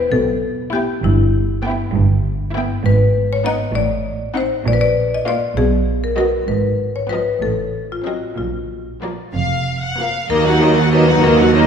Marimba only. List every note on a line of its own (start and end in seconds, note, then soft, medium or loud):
0.12 0.69 A4 medium
0.73 1.02 G4 medium
1.04 1.91 E4 medium
2.86 3.28 B4 medium
3.33 3.46 C#5 medium
3.46 3.74 D#5 medium
3.75 4.32 D5 medium
4.37 4.65 C5 medium
4.68 4.74 D5 medium
4.73 4.80 B4 medium
4.81 5.10 D5 medium
5.14 5.28 D#5 medium
5.28 5.56 D5 medium
5.57 6.00 G#4 medium
6.04 6.17 A#4 medium
6.18 6.47 A#4 medium
6.48 6.91 B4 medium
6.96 7.10 C#5 medium
7.09 7.39 B4 medium
7.42 7.86 A4 medium
7.92 8.06 F4 soft
8.06 8.36 F#4 soft
8.38 9.30 F4 soft
10.30 10.89 A#4 medium
10.93 11.22 B4 medium
11.24 11.67 A#4 medium